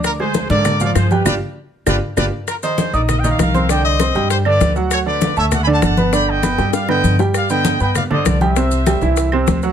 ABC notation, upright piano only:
X:1
M:4/4
L:1/8
Q:1/4=197
K:Gphr
V:1 name="Upright piano"
[Ddd'] [A,Aa]2 [D,Dd]2 [F,Ff]2 [G,Gg] | [DFG] z3 [DFG] z [DFG] z | [K:Cm] z [E,Ee]2 [Eee']2 [E,Ee]2 [Ccc'] | [D,Dd]2 [Ccc'] [G,Gg]2 [D,Dd]2 [^F,^F^f]- |
[^F,^F^f] [D,Dd]2 [=A,=A=a]2 [D,Dd]2 [=B,=B=b] | [D,Dd]2 [=B,=B=b] [G,Gg]2 [D,B,B]2 [G,Gg]- | [G,Gg] [D,=B,=B]2 [B,B=b]2 [D,Dd]2 [G,Gg] | [C,Cc]2 [G,Gg] [=E,=E=e]2 [C,Cc]2 [^F,^F^f] |]